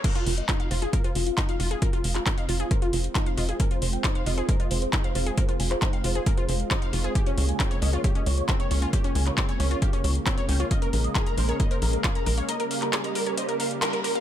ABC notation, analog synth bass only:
X:1
M:4/4
L:1/8
Q:1/4=135
K:Fm
V:1 name="Analog synth bass" clef=bass
z F,,, z F,,, z F,,, z F,,, | z F,,, z F,,, z F,,, z F,,, | z F,,, z F,,, z F,,, z F,,, | z F,,, z F,,, z F,,, z F,,, |
z D,, z D,, z D,, z D,, | z D,, z D,, z D,, z D,, | z B,,, z B,,, z B,,, z B,,, | z8 |]